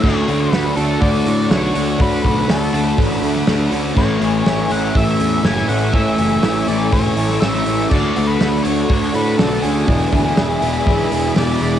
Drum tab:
CC |x---------------|----------------|x---------------|----------------|
HH |--o-o-o-o-o-o-o-|o-o-o-o-o-o-o-o-|--o-o-o-o-o-o-o-|o-o-o-o-o-o-o-o-|
SD |----o-------o---|----o------oo---|----o-------oo--|----o------ooo--|
BD |o-------o-------|o-o-----o-------|o-------o-------|o-------o-------|

CC |x---------------|----------------|
HH |--o-o-o-o-o-o-o-|o-o-o-o-o-o-o-o-|
SD |----o-------o---|----o-------o---|
BD |o-------o-------|o-o-----o-------|